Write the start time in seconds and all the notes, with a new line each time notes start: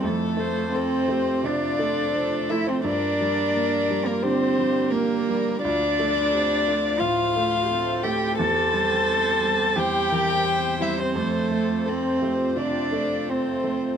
0.03 F2 A3 F4 A4 C5
0.37 A3 C5
0.72 C4 A4 C5
1.08 A3 G4
1.43 C3 D4 F4 D5
1.79 A3 A4
2.15 C4
2.50 A3 E4 E5
2.67 C4 C5
2.84 G2 D4 A#4 D5
2.88 A#3 D5
3.21 G3
3.55 A#3
3.91 G3
4.05 A#3 A#4
4.22 D3 C4 G4 C5
4.59 G3
4.91 A#3 A#4
5.29 G3
5.62 D2 A3 D4 F4 C5 D5
5.99 A3 A4
6.33 C4 G4
6.66 A3 F4
7.00 A2 F4 F5
7.36 A3
7.69 C4 A4
8.03 A3 G4 G5
8.38 E2 C4 G4 A4 A5
8.73 G3 C5
9.09 C4
9.42 G3
9.76 E2 G4 C5 G5
10.12 E3 A#4
10.45 C4 C5
10.80 G3 E4 E5
10.99 C4 C5
11.15 F2 A3 F4 A4 C5
11.51 A3
11.86 C4 A4 C5
12.21 A3 G4
12.56 C3 D4 F4 D5
12.91 A3 A4
13.27 C4 C5
13.64 A3